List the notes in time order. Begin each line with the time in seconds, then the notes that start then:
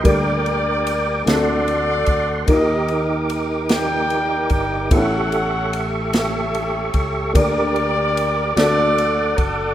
Already playing: A#4 G5
0.03 D2 D3 G3 A#3 D4 G4 A#4 D5 D6, kick, ride
0.46 ride
0.87 ride
1.25 D2 D3 A3 C4 D4 F#4 G#4 A4 F#5 C6, snare, ride
1.29 A4 D5
1.33 A4
1.68 ride
2.06 D2, kick, ride
2.46 D#2 D#3 A#3 D#4 F4 G4 A#4 D6, kick, ride
2.50 G4 A#4 D#5
2.55 G4
2.88 ride
3.30 ride
3.69 A#4 D5 G5, snare, ride
4.10 ride
4.50 G1 G5, kick, ride
4.90 A1 A2 A3 B3 E4 G4 A4 C#5 E5 C#6, kick, ride
4.95 C#4 F#5
5.32 ride
5.73 ride
6.13 G4 C#5 E5, snare, ride
6.54 ride
6.94 C#2, kick, ride
7.33 D2 D3 A#3 D4 G4 A#4 D5 D6, kick, ride
7.76 ride
8.17 ride
8.55 D2 D3 A3 D4 F#4 A4 D5 F#5, snare, ride
8.98 ride
9.36 F#1 A4, kick, ride